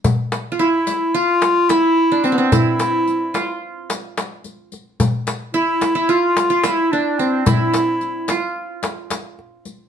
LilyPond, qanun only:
\new Staff \with { instrumentName = "Qanun" } { \time 9/8 \tempo 4. = 73 r8. r32 f'32 e'4 f'4 e'8. d'16 c'32 b32 c'16 | e'4. f'8 r2 r8 | r4 e'8. e'16 f'8. f'16 e'8 d'8 c'8 | e'4. f'8 r2 r8 | }